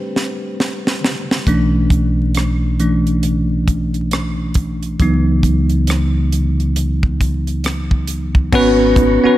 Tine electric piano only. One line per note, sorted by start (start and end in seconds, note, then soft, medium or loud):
0.00 0.99 G3 soft
0.00 0.99 A3 soft
0.00 0.99 C4 soft
0.00 1.00 D4 soft
0.00 0.99 G4 medium
1.47 2.79 E3 soft
1.47 2.79 A3 soft
1.47 2.79 C#4 soft
1.47 2.79 D4 medium
2.80 3.20 E3 soft
2.80 3.20 A3 soft
2.80 3.20 C#4 soft
2.80 3.20 D4 soft
5.00 6.28 E3 soft
5.00 6.29 F#3 soft
5.00 6.29 B3 soft
5.00 6.29 D#4 soft
8.52 9.11 B3 loud
8.52 9.11 C#4 loud
8.52 9.12 F#4 loud
8.52 9.12 B4 loud
9.24 9.38 B3 medium
9.24 9.38 C#4 medium
9.24 9.38 F#4 medium
9.24 9.38 B4 medium